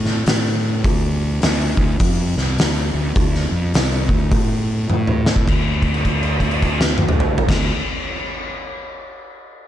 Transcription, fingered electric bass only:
0, 0, Header, 1, 2, 480
1, 0, Start_track
1, 0, Key_signature, -1, "minor"
1, 0, Tempo, 578035
1, 699, Time_signature, 4, 2, 24, 8
1, 8037, End_track
2, 0, Start_track
2, 0, Title_t, "Fingered electric bass"
2, 0, Program_c, 0, 33
2, 0, Note_on_c, 0, 45, 99
2, 186, Note_off_c, 0, 45, 0
2, 220, Note_on_c, 0, 45, 94
2, 669, Note_off_c, 0, 45, 0
2, 705, Note_on_c, 0, 38, 95
2, 1152, Note_off_c, 0, 38, 0
2, 1187, Note_on_c, 0, 38, 99
2, 1458, Note_off_c, 0, 38, 0
2, 1473, Note_on_c, 0, 38, 89
2, 1649, Note_off_c, 0, 38, 0
2, 1662, Note_on_c, 0, 41, 107
2, 1936, Note_off_c, 0, 41, 0
2, 1955, Note_on_c, 0, 36, 93
2, 2131, Note_off_c, 0, 36, 0
2, 2141, Note_on_c, 0, 38, 103
2, 2416, Note_off_c, 0, 38, 0
2, 2437, Note_on_c, 0, 38, 94
2, 2612, Note_off_c, 0, 38, 0
2, 2623, Note_on_c, 0, 38, 91
2, 2897, Note_off_c, 0, 38, 0
2, 2914, Note_on_c, 0, 41, 83
2, 3091, Note_off_c, 0, 41, 0
2, 3112, Note_on_c, 0, 36, 98
2, 3382, Note_off_c, 0, 36, 0
2, 3399, Note_on_c, 0, 38, 102
2, 3573, Note_off_c, 0, 38, 0
2, 3588, Note_on_c, 0, 45, 103
2, 4035, Note_off_c, 0, 45, 0
2, 4070, Note_on_c, 0, 45, 87
2, 4516, Note_off_c, 0, 45, 0
2, 4548, Note_on_c, 0, 38, 99
2, 6114, Note_off_c, 0, 38, 0
2, 6217, Note_on_c, 0, 38, 102
2, 6392, Note_off_c, 0, 38, 0
2, 8037, End_track
0, 0, End_of_file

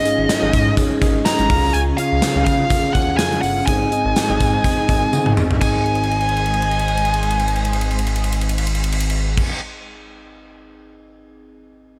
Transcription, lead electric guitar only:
0, 0, Header, 1, 2, 480
1, 0, Start_track
1, 0, Key_signature, -4, "major"
1, 0, Tempo, 483871
1, 1729, Time_signature, 4, 2, 24, 8
1, 11895, End_track
2, 0, Start_track
2, 0, Title_t, "Lead electric guitar"
2, 0, Program_c, 0, 29
2, 0, Note_on_c, 0, 75, 86
2, 731, Note_off_c, 0, 75, 0
2, 1244, Note_on_c, 0, 82, 105
2, 1718, Note_on_c, 0, 80, 111
2, 1741, Note_off_c, 0, 82, 0
2, 1785, Note_off_c, 0, 80, 0
2, 1956, Note_on_c, 0, 77, 94
2, 2409, Note_off_c, 0, 77, 0
2, 2433, Note_on_c, 0, 77, 89
2, 2887, Note_off_c, 0, 77, 0
2, 2909, Note_on_c, 0, 78, 82
2, 3143, Note_off_c, 0, 78, 0
2, 3147, Note_on_c, 0, 80, 94
2, 3384, Note_off_c, 0, 80, 0
2, 3387, Note_on_c, 0, 78, 83
2, 3627, Note_off_c, 0, 78, 0
2, 3631, Note_on_c, 0, 80, 93
2, 5281, Note_off_c, 0, 80, 0
2, 5570, Note_on_c, 0, 80, 86
2, 9348, Note_off_c, 0, 80, 0
2, 11895, End_track
0, 0, End_of_file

